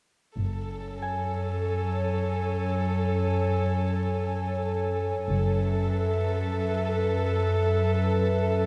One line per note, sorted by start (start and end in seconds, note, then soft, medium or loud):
0.37 0.96 F#1 soft
0.37 5.25 F#2 soft
0.37 5.25 A4 soft
0.37 5.25 C#5 soft
0.37 5.25 G#5 soft
1.02 4.92 G#5 soft
5.28 5.85 F#1 soft
5.28 8.66 F#2 soft
5.28 8.66 A4 soft
5.28 8.66 B4 soft
5.28 8.66 E5 soft